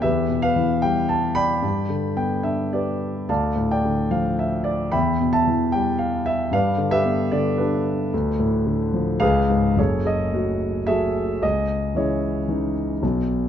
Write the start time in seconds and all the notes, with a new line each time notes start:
0.02 E2 G4 B4 E5
0.28 B2
0.42 B4 F5
0.56 E3
0.82 G3 G5
1.09 A5
1.35 D5 G5 B5
1.62 G2
1.89 D3
2.16 B3 G5
2.43 D4 E5
2.73 G4 B4 D5
3.29 D2 D5 F5 A5
3.56 A2
3.71 D5 G5
3.85 D3
4.11 F3 F5
4.39 E5
4.64 D5
4.92 E2 E5 G5 B5
5.20 B2
5.33 E5 A5
5.47 E3
5.72 G3 G5
5.99 F5
6.26 E5
6.51 G2 B4 D5 F5
6.77 D3
6.91 G4 B4 E5
7.04 B3
7.32 D3 D5
7.58 D4 G4 B4
8.13 D2
8.39 A2
8.66 D3
8.94 F3
9.20 C#2 G#4 B4 F5
9.50 G#2
9.76 F#1 F#2 G#4 A4 C#5
10.05 G#4 A4 D#5
10.33 F#3 A3 F#4
10.87 F#3 A3 F#4 G#4 A4 E5
11.41 C#2 G#4 D#5
11.95 E3 C#4 E4 G#4 C#5 D#5
12.48 E3 C#4 D#4
13.03 B1 B2